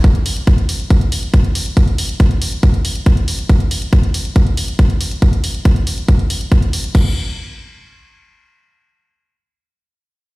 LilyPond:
\new DrumStaff \with { instrumentName = "Drums" } \drummode { \time 4/4 \tempo 4 = 139 <hh bd>16 hh16 hho16 hh16 <hh bd>16 hh16 hho16 hh16 <hh bd>16 hh16 hho16 hh16 <hh bd>16 hh16 hho16 hh16 | <hh bd>16 hh16 hho16 hh16 <hh bd>16 hh16 hho16 hh16 <hh bd>16 hh16 hho16 hh16 <hh bd>16 hh16 hho16 hh16 | <hh bd>16 hh16 hho16 hh16 <hh bd>16 hh16 hho16 hh16 <hh bd>16 hh16 hho16 hh16 <hh bd>16 hh16 hho16 hh16 | <hh bd>16 hh16 hho16 hh16 <hh bd>16 hh16 hho16 hh16 <hh bd>16 hh16 hho16 hh16 <hh bd>16 hh16 hho16 hh16 |
<cymc bd>4 r4 r4 r4 | r4 r4 r4 r4 | }